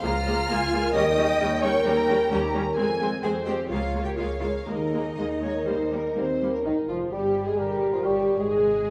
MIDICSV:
0, 0, Header, 1, 12, 480
1, 0, Start_track
1, 0, Tempo, 458365
1, 994, Time_signature, 4, 2, 24, 8
1, 3873, Tempo, 493016
1, 6753, Tempo, 460829
1, 9091, End_track
2, 0, Start_track
2, 0, Title_t, "Violin section"
2, 0, Program_c, 0, 48
2, 26, Note_on_c, 0, 89, 108
2, 971, Note_off_c, 0, 89, 0
2, 993, Note_on_c, 0, 87, 97
2, 1692, Note_off_c, 0, 87, 0
2, 1695, Note_on_c, 0, 85, 88
2, 1933, Note_off_c, 0, 85, 0
2, 1937, Note_on_c, 0, 82, 90
2, 2420, Note_off_c, 0, 82, 0
2, 2425, Note_on_c, 0, 79, 73
2, 2509, Note_off_c, 0, 79, 0
2, 3389, Note_on_c, 0, 80, 84
2, 3473, Note_off_c, 0, 80, 0
2, 3629, Note_on_c, 0, 79, 77
2, 3713, Note_off_c, 0, 79, 0
2, 3870, Note_on_c, 0, 77, 73
2, 4209, Note_on_c, 0, 79, 64
2, 4210, Note_off_c, 0, 77, 0
2, 4258, Note_off_c, 0, 79, 0
2, 4338, Note_on_c, 0, 77, 69
2, 4555, Note_off_c, 0, 77, 0
2, 4566, Note_on_c, 0, 77, 62
2, 4809, Note_off_c, 0, 77, 0
2, 4816, Note_on_c, 0, 75, 66
2, 6276, Note_off_c, 0, 75, 0
2, 6750, Note_on_c, 0, 63, 43
2, 6833, Note_off_c, 0, 63, 0
2, 6992, Note_on_c, 0, 65, 41
2, 7075, Note_off_c, 0, 65, 0
2, 7220, Note_on_c, 0, 67, 46
2, 7579, Note_off_c, 0, 67, 0
2, 7591, Note_on_c, 0, 68, 38
2, 7713, Note_off_c, 0, 68, 0
2, 7714, Note_on_c, 0, 67, 45
2, 8076, Note_on_c, 0, 65, 40
2, 8077, Note_off_c, 0, 67, 0
2, 8194, Note_off_c, 0, 65, 0
2, 8194, Note_on_c, 0, 67, 45
2, 8547, Note_off_c, 0, 67, 0
2, 8548, Note_on_c, 0, 68, 46
2, 9091, Note_off_c, 0, 68, 0
2, 9091, End_track
3, 0, Start_track
3, 0, Title_t, "Cor anglais"
3, 0, Program_c, 1, 69
3, 7712, Note_on_c, 1, 70, 37
3, 8162, Note_off_c, 1, 70, 0
3, 8205, Note_on_c, 1, 73, 38
3, 8670, Note_off_c, 1, 73, 0
3, 8681, Note_on_c, 1, 75, 46
3, 9091, Note_off_c, 1, 75, 0
3, 9091, End_track
4, 0, Start_track
4, 0, Title_t, "Violin section"
4, 0, Program_c, 2, 48
4, 38, Note_on_c, 2, 82, 88
4, 520, Note_off_c, 2, 82, 0
4, 528, Note_on_c, 2, 80, 82
4, 999, Note_off_c, 2, 80, 0
4, 1006, Note_on_c, 2, 79, 97
4, 2401, Note_off_c, 2, 79, 0
4, 2418, Note_on_c, 2, 82, 84
4, 2904, Note_on_c, 2, 80, 84
4, 2905, Note_off_c, 2, 82, 0
4, 3377, Note_off_c, 2, 80, 0
4, 3393, Note_on_c, 2, 72, 71
4, 3866, Note_off_c, 2, 72, 0
4, 3866, Note_on_c, 2, 73, 70
4, 4795, Note_off_c, 2, 73, 0
4, 4805, Note_on_c, 2, 70, 59
4, 5255, Note_off_c, 2, 70, 0
4, 5297, Note_on_c, 2, 75, 73
4, 5374, Note_off_c, 2, 75, 0
4, 5553, Note_on_c, 2, 73, 67
4, 5790, Note_off_c, 2, 73, 0
4, 5803, Note_on_c, 2, 72, 60
4, 6035, Note_off_c, 2, 72, 0
4, 6043, Note_on_c, 2, 70, 57
4, 6279, Note_on_c, 2, 72, 62
4, 6280, Note_off_c, 2, 70, 0
4, 6633, Note_on_c, 2, 70, 48
4, 6638, Note_off_c, 2, 72, 0
4, 6741, Note_on_c, 2, 63, 46
4, 6748, Note_off_c, 2, 70, 0
4, 6971, Note_off_c, 2, 63, 0
4, 6994, Note_on_c, 2, 65, 43
4, 7077, Note_off_c, 2, 65, 0
4, 7226, Note_on_c, 2, 67, 45
4, 7582, Note_off_c, 2, 67, 0
4, 7595, Note_on_c, 2, 68, 39
4, 7715, Note_off_c, 2, 68, 0
4, 7715, Note_on_c, 2, 67, 44
4, 8076, Note_on_c, 2, 65, 41
4, 8078, Note_off_c, 2, 67, 0
4, 8194, Note_off_c, 2, 65, 0
4, 8206, Note_on_c, 2, 67, 41
4, 8561, Note_off_c, 2, 67, 0
4, 8561, Note_on_c, 2, 68, 47
4, 9091, Note_off_c, 2, 68, 0
4, 9091, End_track
5, 0, Start_track
5, 0, Title_t, "Clarinet"
5, 0, Program_c, 3, 71
5, 6750, Note_on_c, 3, 63, 47
5, 6989, Note_on_c, 3, 65, 44
5, 7005, Note_off_c, 3, 63, 0
5, 7231, Note_off_c, 3, 65, 0
5, 7236, Note_on_c, 3, 67, 44
5, 7587, Note_off_c, 3, 67, 0
5, 7597, Note_on_c, 3, 68, 42
5, 7717, Note_on_c, 3, 67, 48
5, 7732, Note_off_c, 3, 68, 0
5, 8077, Note_on_c, 3, 65, 38
5, 8093, Note_off_c, 3, 67, 0
5, 8191, Note_off_c, 3, 65, 0
5, 8197, Note_on_c, 3, 67, 45
5, 8549, Note_off_c, 3, 67, 0
5, 8554, Note_on_c, 3, 68, 46
5, 9091, Note_off_c, 3, 68, 0
5, 9091, End_track
6, 0, Start_track
6, 0, Title_t, "Flute"
6, 0, Program_c, 4, 73
6, 6754, Note_on_c, 4, 63, 47
6, 7002, Note_on_c, 4, 65, 44
6, 7018, Note_off_c, 4, 63, 0
6, 7228, Note_off_c, 4, 65, 0
6, 7235, Note_on_c, 4, 67, 46
6, 7586, Note_off_c, 4, 67, 0
6, 7597, Note_on_c, 4, 68, 42
6, 7727, Note_on_c, 4, 67, 47
6, 7743, Note_off_c, 4, 68, 0
6, 8091, Note_on_c, 4, 65, 43
6, 8107, Note_off_c, 4, 67, 0
6, 8215, Note_on_c, 4, 67, 46
6, 8230, Note_off_c, 4, 65, 0
6, 8574, Note_on_c, 4, 68, 44
6, 8589, Note_off_c, 4, 67, 0
6, 9091, Note_off_c, 4, 68, 0
6, 9091, End_track
7, 0, Start_track
7, 0, Title_t, "French horn section"
7, 0, Program_c, 5, 60
7, 6273, Note_on_c, 5, 60, 62
7, 6609, Note_off_c, 5, 60, 0
7, 6642, Note_on_c, 5, 61, 43
7, 6750, Note_on_c, 5, 63, 52
7, 6755, Note_off_c, 5, 61, 0
7, 6859, Note_off_c, 5, 63, 0
7, 6995, Note_on_c, 5, 65, 45
7, 7230, Note_off_c, 5, 65, 0
7, 7242, Note_on_c, 5, 67, 49
7, 7597, Note_off_c, 5, 67, 0
7, 7601, Note_on_c, 5, 68, 44
7, 7718, Note_off_c, 5, 68, 0
7, 7720, Note_on_c, 5, 67, 49
7, 8080, Note_off_c, 5, 67, 0
7, 8083, Note_on_c, 5, 65, 43
7, 8193, Note_on_c, 5, 67, 53
7, 8200, Note_off_c, 5, 65, 0
7, 8554, Note_off_c, 5, 67, 0
7, 8563, Note_on_c, 5, 68, 56
7, 9091, Note_off_c, 5, 68, 0
7, 9091, End_track
8, 0, Start_track
8, 0, Title_t, "Cello section"
8, 0, Program_c, 6, 48
8, 32, Note_on_c, 6, 65, 105
8, 974, Note_off_c, 6, 65, 0
8, 987, Note_on_c, 6, 75, 105
8, 1689, Note_off_c, 6, 75, 0
8, 1696, Note_on_c, 6, 73, 100
8, 1939, Note_off_c, 6, 73, 0
8, 1939, Note_on_c, 6, 70, 97
8, 2411, Note_off_c, 6, 70, 0
8, 2420, Note_on_c, 6, 67, 89
8, 2658, Note_off_c, 6, 67, 0
8, 3384, Note_on_c, 6, 68, 92
8, 3468, Note_off_c, 6, 68, 0
8, 3625, Note_on_c, 6, 67, 84
8, 3867, Note_off_c, 6, 67, 0
8, 3868, Note_on_c, 6, 65, 80
8, 4209, Note_off_c, 6, 65, 0
8, 4213, Note_on_c, 6, 67, 73
8, 4326, Note_on_c, 6, 65, 79
8, 4333, Note_off_c, 6, 67, 0
8, 4404, Note_off_c, 6, 65, 0
8, 4561, Note_on_c, 6, 65, 73
8, 4639, Note_off_c, 6, 65, 0
8, 4817, Note_on_c, 6, 63, 69
8, 6248, Note_off_c, 6, 63, 0
8, 6753, Note_on_c, 6, 39, 42
8, 6836, Note_off_c, 6, 39, 0
8, 6992, Note_on_c, 6, 41, 42
8, 7228, Note_off_c, 6, 41, 0
8, 7231, Note_on_c, 6, 43, 41
8, 7585, Note_off_c, 6, 43, 0
8, 7593, Note_on_c, 6, 44, 42
8, 7710, Note_on_c, 6, 43, 43
8, 7714, Note_off_c, 6, 44, 0
8, 8068, Note_off_c, 6, 43, 0
8, 8074, Note_on_c, 6, 41, 39
8, 8194, Note_on_c, 6, 43, 45
8, 8195, Note_off_c, 6, 41, 0
8, 8548, Note_off_c, 6, 43, 0
8, 8554, Note_on_c, 6, 44, 51
8, 9091, Note_off_c, 6, 44, 0
8, 9091, End_track
9, 0, Start_track
9, 0, Title_t, "Harp"
9, 0, Program_c, 7, 46
9, 0, Note_on_c, 7, 53, 80
9, 0, Note_on_c, 7, 65, 60
9, 0, Note_on_c, 7, 68, 57
9, 32, Note_on_c, 7, 49, 78
9, 279, Note_on_c, 7, 61, 62
9, 503, Note_off_c, 7, 68, 0
9, 516, Note_on_c, 7, 68, 63
9, 753, Note_on_c, 7, 70, 62
9, 990, Note_on_c, 7, 51, 82
9, 1009, Note_off_c, 7, 53, 0
9, 1012, Note_off_c, 7, 49, 0
9, 1012, Note_off_c, 7, 65, 0
9, 1012, Note_off_c, 7, 68, 0
9, 1214, Note_off_c, 7, 61, 0
9, 1226, Note_on_c, 7, 61, 60
9, 1693, Note_off_c, 7, 70, 0
9, 1705, Note_on_c, 7, 70, 61
9, 1946, Note_on_c, 7, 58, 60
9, 2165, Note_off_c, 7, 61, 0
9, 2177, Note_on_c, 7, 61, 60
9, 2659, Note_off_c, 7, 70, 0
9, 2672, Note_on_c, 7, 70, 54
9, 2910, Note_on_c, 7, 53, 73
9, 2924, Note_off_c, 7, 61, 0
9, 2925, Note_off_c, 7, 51, 0
9, 2928, Note_off_c, 7, 58, 0
9, 2930, Note_off_c, 7, 70, 0
9, 3149, Note_on_c, 7, 60, 52
9, 3386, Note_on_c, 7, 68, 53
9, 3624, Note_on_c, 7, 75, 53
9, 3864, Note_on_c, 7, 49, 62
9, 3889, Note_off_c, 7, 75, 0
9, 3892, Note_off_c, 7, 60, 0
9, 4100, Note_on_c, 7, 58, 48
9, 4326, Note_off_c, 7, 68, 0
9, 4337, Note_on_c, 7, 68, 51
9, 4578, Note_on_c, 7, 73, 47
9, 4823, Note_on_c, 7, 51, 58
9, 4833, Note_off_c, 7, 49, 0
9, 4839, Note_off_c, 7, 53, 0
9, 4840, Note_off_c, 7, 73, 0
9, 5058, Note_off_c, 7, 58, 0
9, 5070, Note_on_c, 7, 58, 43
9, 5300, Note_off_c, 7, 68, 0
9, 5312, Note_on_c, 7, 68, 45
9, 5560, Note_on_c, 7, 70, 45
9, 5784, Note_off_c, 7, 51, 0
9, 5795, Note_on_c, 7, 51, 53
9, 5816, Note_off_c, 7, 68, 0
9, 6029, Note_off_c, 7, 58, 0
9, 6041, Note_on_c, 7, 58, 44
9, 6284, Note_on_c, 7, 67, 46
9, 6507, Note_off_c, 7, 70, 0
9, 6519, Note_on_c, 7, 70, 42
9, 6754, Note_on_c, 7, 44, 35
9, 6772, Note_off_c, 7, 51, 0
9, 6772, Note_off_c, 7, 70, 0
9, 6774, Note_off_c, 7, 58, 0
9, 6776, Note_off_c, 7, 67, 0
9, 6915, Note_on_c, 7, 56, 27
9, 7236, Note_on_c, 7, 68, 28
9, 7395, Note_on_c, 7, 80, 30
9, 7725, Note_on_c, 7, 46, 34
9, 7734, Note_off_c, 7, 44, 0
9, 7734, Note_off_c, 7, 56, 0
9, 7735, Note_off_c, 7, 68, 0
9, 7735, Note_off_c, 7, 80, 0
9, 7884, Note_on_c, 7, 61, 28
9, 8049, Note_on_c, 7, 73, 30
9, 8514, Note_off_c, 7, 73, 0
9, 8526, Note_on_c, 7, 73, 29
9, 8687, Note_on_c, 7, 48, 36
9, 8699, Note_off_c, 7, 61, 0
9, 8700, Note_off_c, 7, 46, 0
9, 8700, Note_off_c, 7, 73, 0
9, 8848, Note_on_c, 7, 60, 29
9, 9008, Note_on_c, 7, 75, 31
9, 9091, Note_off_c, 7, 48, 0
9, 9091, Note_off_c, 7, 60, 0
9, 9091, Note_off_c, 7, 75, 0
9, 9091, End_track
10, 0, Start_track
10, 0, Title_t, "Viola section"
10, 0, Program_c, 8, 48
10, 30, Note_on_c, 8, 58, 66
10, 31, Note_on_c, 8, 56, 66
10, 114, Note_off_c, 8, 58, 0
10, 115, Note_off_c, 8, 56, 0
10, 277, Note_on_c, 8, 56, 61
10, 278, Note_on_c, 8, 58, 64
10, 361, Note_off_c, 8, 56, 0
10, 362, Note_off_c, 8, 58, 0
10, 518, Note_on_c, 8, 56, 69
10, 518, Note_on_c, 8, 58, 69
10, 601, Note_off_c, 8, 56, 0
10, 602, Note_off_c, 8, 58, 0
10, 757, Note_on_c, 8, 58, 62
10, 758, Note_on_c, 8, 56, 68
10, 841, Note_off_c, 8, 58, 0
10, 842, Note_off_c, 8, 56, 0
10, 987, Note_on_c, 8, 55, 71
10, 991, Note_on_c, 8, 61, 66
10, 1070, Note_off_c, 8, 55, 0
10, 1075, Note_off_c, 8, 61, 0
10, 1231, Note_on_c, 8, 61, 64
10, 1232, Note_on_c, 8, 55, 64
10, 1314, Note_off_c, 8, 61, 0
10, 1316, Note_off_c, 8, 55, 0
10, 1474, Note_on_c, 8, 55, 66
10, 1475, Note_on_c, 8, 61, 66
10, 1558, Note_off_c, 8, 55, 0
10, 1559, Note_off_c, 8, 61, 0
10, 1710, Note_on_c, 8, 55, 60
10, 1711, Note_on_c, 8, 61, 60
10, 1794, Note_off_c, 8, 55, 0
10, 1794, Note_off_c, 8, 61, 0
10, 1944, Note_on_c, 8, 55, 67
10, 1944, Note_on_c, 8, 61, 66
10, 2028, Note_off_c, 8, 55, 0
10, 2028, Note_off_c, 8, 61, 0
10, 2183, Note_on_c, 8, 61, 58
10, 2188, Note_on_c, 8, 55, 61
10, 2267, Note_off_c, 8, 61, 0
10, 2272, Note_off_c, 8, 55, 0
10, 2422, Note_on_c, 8, 61, 66
10, 2423, Note_on_c, 8, 55, 63
10, 2506, Note_off_c, 8, 61, 0
10, 2507, Note_off_c, 8, 55, 0
10, 2663, Note_on_c, 8, 61, 62
10, 2666, Note_on_c, 8, 55, 63
10, 2747, Note_off_c, 8, 61, 0
10, 2750, Note_off_c, 8, 55, 0
10, 2902, Note_on_c, 8, 60, 65
10, 2904, Note_on_c, 8, 56, 66
10, 2986, Note_off_c, 8, 60, 0
10, 2987, Note_off_c, 8, 56, 0
10, 3145, Note_on_c, 8, 56, 60
10, 3146, Note_on_c, 8, 60, 59
10, 3228, Note_off_c, 8, 56, 0
10, 3230, Note_off_c, 8, 60, 0
10, 3391, Note_on_c, 8, 56, 60
10, 3391, Note_on_c, 8, 60, 57
10, 3474, Note_off_c, 8, 56, 0
10, 3475, Note_off_c, 8, 60, 0
10, 3634, Note_on_c, 8, 60, 52
10, 3635, Note_on_c, 8, 56, 56
10, 3717, Note_off_c, 8, 60, 0
10, 3718, Note_off_c, 8, 56, 0
10, 3882, Note_on_c, 8, 56, 55
10, 3882, Note_on_c, 8, 58, 57
10, 3959, Note_off_c, 8, 56, 0
10, 3960, Note_off_c, 8, 58, 0
10, 4105, Note_on_c, 8, 58, 49
10, 4106, Note_on_c, 8, 56, 50
10, 4183, Note_off_c, 8, 58, 0
10, 4184, Note_off_c, 8, 56, 0
10, 4333, Note_on_c, 8, 58, 53
10, 4335, Note_on_c, 8, 56, 56
10, 4411, Note_off_c, 8, 58, 0
10, 4413, Note_off_c, 8, 56, 0
10, 4569, Note_on_c, 8, 58, 52
10, 4572, Note_on_c, 8, 56, 49
10, 4647, Note_off_c, 8, 58, 0
10, 4650, Note_off_c, 8, 56, 0
10, 4814, Note_on_c, 8, 58, 50
10, 4815, Note_on_c, 8, 56, 52
10, 4891, Note_off_c, 8, 58, 0
10, 4893, Note_off_c, 8, 56, 0
10, 5069, Note_on_c, 8, 56, 47
10, 5070, Note_on_c, 8, 58, 48
10, 5147, Note_off_c, 8, 56, 0
10, 5148, Note_off_c, 8, 58, 0
10, 5311, Note_on_c, 8, 56, 49
10, 5312, Note_on_c, 8, 58, 49
10, 5389, Note_off_c, 8, 56, 0
10, 5390, Note_off_c, 8, 58, 0
10, 5549, Note_on_c, 8, 56, 45
10, 5550, Note_on_c, 8, 58, 46
10, 5627, Note_off_c, 8, 56, 0
10, 5628, Note_off_c, 8, 58, 0
10, 5786, Note_on_c, 8, 55, 49
10, 5788, Note_on_c, 8, 58, 46
10, 5864, Note_off_c, 8, 55, 0
10, 5866, Note_off_c, 8, 58, 0
10, 6030, Note_on_c, 8, 55, 44
10, 6031, Note_on_c, 8, 58, 44
10, 6107, Note_off_c, 8, 55, 0
10, 6109, Note_off_c, 8, 58, 0
10, 6266, Note_on_c, 8, 55, 48
10, 6268, Note_on_c, 8, 58, 47
10, 6344, Note_off_c, 8, 55, 0
10, 6346, Note_off_c, 8, 58, 0
10, 6513, Note_on_c, 8, 55, 45
10, 6515, Note_on_c, 8, 58, 44
10, 6591, Note_off_c, 8, 55, 0
10, 6593, Note_off_c, 8, 58, 0
10, 6741, Note_on_c, 8, 51, 41
10, 6824, Note_off_c, 8, 51, 0
10, 6995, Note_on_c, 8, 53, 43
10, 7230, Note_off_c, 8, 53, 0
10, 7232, Note_on_c, 8, 55, 44
10, 7585, Note_off_c, 8, 55, 0
10, 7591, Note_on_c, 8, 56, 41
10, 7713, Note_off_c, 8, 56, 0
10, 7715, Note_on_c, 8, 55, 45
10, 8071, Note_off_c, 8, 55, 0
10, 8082, Note_on_c, 8, 53, 36
10, 8195, Note_on_c, 8, 55, 46
10, 8200, Note_off_c, 8, 53, 0
10, 8555, Note_off_c, 8, 55, 0
10, 8560, Note_on_c, 8, 56, 49
10, 9091, Note_off_c, 8, 56, 0
10, 9091, End_track
11, 0, Start_track
11, 0, Title_t, "Bassoon"
11, 0, Program_c, 10, 70
11, 6758, Note_on_c, 10, 51, 44
11, 6865, Note_off_c, 10, 51, 0
11, 6999, Note_on_c, 10, 53, 41
11, 7231, Note_off_c, 10, 53, 0
11, 7239, Note_on_c, 10, 55, 48
11, 7601, Note_on_c, 10, 56, 41
11, 7616, Note_off_c, 10, 55, 0
11, 7706, Note_on_c, 10, 55, 44
11, 7722, Note_off_c, 10, 56, 0
11, 8080, Note_on_c, 10, 53, 40
11, 8095, Note_off_c, 10, 55, 0
11, 8189, Note_off_c, 10, 53, 0
11, 8195, Note_on_c, 10, 55, 48
11, 8548, Note_off_c, 10, 55, 0
11, 8567, Note_on_c, 10, 56, 50
11, 9091, Note_off_c, 10, 56, 0
11, 9091, End_track
12, 0, Start_track
12, 0, Title_t, "Double bass section"
12, 0, Program_c, 11, 48
12, 26, Note_on_c, 11, 37, 81
12, 457, Note_off_c, 11, 37, 0
12, 512, Note_on_c, 11, 37, 73
12, 935, Note_off_c, 11, 37, 0
12, 993, Note_on_c, 11, 39, 85
12, 1414, Note_off_c, 11, 39, 0
12, 1467, Note_on_c, 11, 39, 79
12, 1886, Note_off_c, 11, 39, 0
12, 1936, Note_on_c, 11, 39, 85
12, 2363, Note_off_c, 11, 39, 0
12, 2419, Note_on_c, 11, 39, 70
12, 2848, Note_off_c, 11, 39, 0
12, 2906, Note_on_c, 11, 41, 77
12, 3332, Note_off_c, 11, 41, 0
12, 3394, Note_on_c, 11, 41, 71
12, 3819, Note_off_c, 11, 41, 0
12, 3872, Note_on_c, 11, 37, 73
12, 4280, Note_off_c, 11, 37, 0
12, 4335, Note_on_c, 11, 37, 57
12, 4760, Note_off_c, 11, 37, 0
12, 4815, Note_on_c, 11, 39, 62
12, 5251, Note_off_c, 11, 39, 0
12, 5306, Note_on_c, 11, 39, 58
12, 5737, Note_off_c, 11, 39, 0
12, 5794, Note_on_c, 11, 39, 56
12, 6219, Note_off_c, 11, 39, 0
12, 6273, Note_on_c, 11, 39, 54
12, 6696, Note_off_c, 11, 39, 0
12, 6753, Note_on_c, 11, 39, 46
12, 6837, Note_off_c, 11, 39, 0
12, 6991, Note_on_c, 11, 29, 39
12, 7228, Note_off_c, 11, 29, 0
12, 7233, Note_on_c, 11, 31, 44
12, 7585, Note_off_c, 11, 31, 0
12, 7713, Note_on_c, 11, 31, 47
12, 8069, Note_off_c, 11, 31, 0
12, 8200, Note_on_c, 11, 31, 42
12, 8551, Note_off_c, 11, 31, 0
12, 8560, Note_on_c, 11, 32, 45
12, 9091, Note_off_c, 11, 32, 0
12, 9091, End_track
0, 0, End_of_file